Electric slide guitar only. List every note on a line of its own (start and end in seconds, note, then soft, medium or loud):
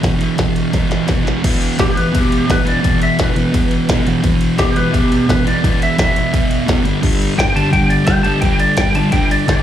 1.80 1.96 G4 loud
1.97 2.13 B4 loud
2.16 2.49 G4 medium
2.52 2.67 B4 medium
2.68 3.01 D5 medium
3.03 3.19 E5 medium
3.24 3.89 B4 medium
4.59 4.75 G4 loud
4.77 4.93 B4 loud
4.92 5.26 G4 medium
5.29 5.46 B4 loud
5.48 5.80 D5 medium
5.83 5.99 E5 medium
6.00 6.66 E5 loud
7.39 7.55 G5 loud
7.56 7.72 A5 medium
7.73 7.89 G5 loud
7.90 8.07 D5 loud
8.07 8.23 G5 loud
8.23 8.41 A5 medium
8.41 8.59 G5 medium
8.60 8.77 D5 loud
8.77 8.94 G5 loud
8.95 9.12 A5 loud
9.12 9.29 G5 loud
9.31 9.48 D5 loud
9.50 9.63 D5 loud